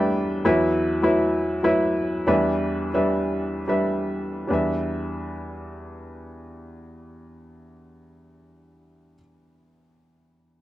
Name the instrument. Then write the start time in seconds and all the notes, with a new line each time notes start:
upright piano
Already playing: E2 E3 G3 D4 B4 D5 E5 G5
0.45 E2 F#3 E4 B4 E5
1.03 F#3 E4 B4 E5
1.63 F#3 E4 B4 E5
2.27 E2 E3 G3 D4 B4 E5
2.94 G3 D4 B4 E5
3.68 G3 D4 B4 E5
4.47 E2 G3 D4 B4
4.53 E5